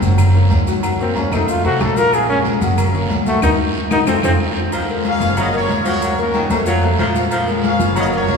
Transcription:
0.02 F#1 F#3 F#4 F#5, high conga, short guiro, maracas
0.18 high conga, low conga, low agogo, long guiro, claves, maracas
0.34 A#3 A#4 C#5, high conga, maracas
0.50 D#2, high conga, low timbale, low agogo, short guiro, maracas
0.67 F#3 F#4 F#5, high conga, short guiro, maracas
0.83 F#3 F#4 F#5, high conga, low agogo, long guiro, claves, maracas
1.00 A#3 C4 A#4 C#5, high conga, maracas
1.16 C#4, high conga, low timbale, low agogo, short guiro, maracas
1.32 F2 A3 D#4 A4 C5, high conga, low agogo, short guiro, claves, maracas
1.48 F4, high conga, long guiro, maracas
1.64 C2 A3 F#4 A4 C5, high conga, low agogo, maracas
1.80 A#1 A4, high conga, low timbale, low agogo, short guiro, claves, maracas
1.97 F3 F4 A#4 F5, high conga, short guiro, maracas
2.13 G#4, high conga, low agogo, long guiro, claves, maracas
2.30 G#3 C#4 G#4 A#4, high conga, maracas
2.45 high conga, low timbale, low agogo, short guiro, maracas
2.61 F#1 F#3 F#4 F#5, short guiro, maracas
2.78 high conga, low conga, low agogo, long guiro, claves, maracas
2.94 A#3 A#4 C#5, high conga, low conga, maracas
3.09 D#2, high conga, low timbale, low agogo, short guiro, maracas
3.26 F#3 A3 F#4 F#5, high conga, short guiro, maracas
3.42 D#2 D#4 F#4 A#4, high conga, high timbale, long guiro, claves, maracas
3.91 D#2 D#4 F#4 A#4, high conga, high timbale, long guiro, claves, maracas
4.07 F2 C4 F4 A4 C5, high conga, high timbale, long guiro, claves, maracas
4.23 F2 C4 F4 A4 C5, high conga, high timbale, long guiro, claves, maracas
4.72 F3, high conga, low agogo, long guiro, maracas
4.89 G#3 G#4 A#4, high conga, maracas
5.05 G#4 C#5 F5, high conga, low timbale, low agogo, short guiro, maracas
5.20 F#1 F3 F4 F5, high conga, short guiro, maracas
5.36 F#3 A#4 D#5, high conga, low conga, low agogo, long guiro, maracas
5.53 A#3 F4 A#4 C#5, high conga, maracas
5.69 D#2, high conga, low timbale, low agogo, short guiro, maracas
5.85 F3 F#3 F#4 A#4 C#5 F#5, high conga, short guiro, maracas
6.02 F#3 F#4 F#5, high conga, low agogo, long guiro, maracas
6.18 A#3 C#4 F#4 A#4 C#5, high conga, maracas
6.34 D#3, high conga, low timbale, low agogo, short guiro, maracas
6.50 F2 A3 A4 C5, high conga, low agogo, short guiro, maracas
6.66 F3 F#3 F4 F5, high conga, long guiro, maracas
6.83 A3 A4 C5, high conga, low agogo, maracas
6.99 A#1 F3, high conga, low timbale, low agogo, short guiro, maracas
7.15 F3 F4 F5, high conga, short guiro, maracas
7.31 F3, high conga, low agogo, long guiro, maracas
7.48 G#3 G#4 A#4, high conga, maracas
7.63 G#4 C#5 F5, high conga, low timbale, low agogo, short guiro, maracas
7.79 F#1 F3 F4 F5, high conga, short guiro, maracas
7.96 F#3 A#4 D#5, high conga, low conga, low agogo, long guiro, maracas
8.12 A#3 F4 A#4 C#5, high conga, maracas
8.28 D#2, high conga, low timbale, low agogo, short guiro, maracas

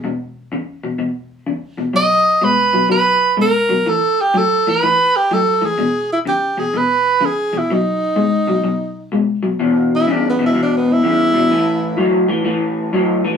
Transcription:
0.04 E2 B2
0.52 E2 C#3
0.84 E2 B2
0.98 E2 B2
1.47 E2 C#3
1.77 E2 B2
1.94 B2 F#3 D#5
2.41 B2 G#3 B4
2.73 B2 F#3
2.89 B2 F#3 B4
3.37 B2 G#3
3.42 A#4
3.69 B2 F#3
3.86 A2 E3 A4
4.21 G4
4.34 A2 F#3 A4
4.67 A2 E3 B4
4.83 A2 E3
5.16 G4
5.31 A2 F#3 A4
5.62 A2 E3
5.66 G#4
5.78 E2 B2
6.13 E4
6.25 E2 C#3 G4
6.57 E2 B2 G#4
6.73 E2 B2 B4
7.21 E2 C#3
7.25 G#4
7.53 E2 B2
7.58 E4
7.70 B2 F#3 D#4
8.16 B2 G#3
8.47 B2 F#3
8.64 B2 F#3
9.12 B2 G#3
9.43 B2 F#3
9.59 E2 B2
9.96 E4
10.07 E2 C#3
10.12 D4
10.30 B3
10.39 E2 B2
10.46 E4
10.55 E2 B2
10.63 D4
10.78 B3
10.93 E4
11.03 E2 C#3
11.33 E2 B2
11.50 A2 E3
11.97 A2 F#3
12.28 A2 E3
12.44 A2 E3
12.93 A2 F#3
13.25 A2 E3

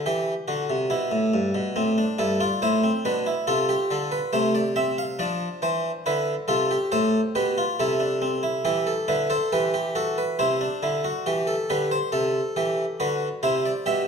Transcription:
0.06 E3 G4
0.48 D3 F#4
0.70 C3
0.90 B2 E4
1.12 A2
1.34 G2
1.55 B2
1.76 A2 C4
1.98 D4
2.19 G2 E4 A4
2.40 F4 D5
2.62 A2 E4 C5
2.84 C4
3.05 B2 D4 B4
3.26 E4
3.47 C3 F4 A4
3.69 G4
3.91 D3 A4
4.12 B4
4.33 C3 A3 C5
4.55 D5
4.76 C4 E5
4.98 F5
5.19 F3 D4 D5
5.62 E3 C5
6.06 D3 E4 B4
6.48 C3 F4 A4
6.71 G4
6.92 A2 A4 C5
7.35 B2 G4 B4
7.58 F4
7.80 C3 E4 A4
8.00 D4
8.22 C4
8.43 E4
8.65 E3 E4 G4
8.87 A4
9.08 D3 E4 B4
9.30 A4 C5
9.52 E3 G4 B4
9.74 G4
9.95 F#4 A4
10.18 B4
10.39 C3 E4 C5
10.61 D4
10.83 D3 E4
11.04 F#4
11.26 E3 G4
11.47 A4
11.70 D3 G4 B4
11.91 C5
12.12 C3 A4
12.56 E3 G4
13.00 D3 F#4 B4
13.43 C3 E4 C5
13.65 D5
13.86 B2 G4 E5

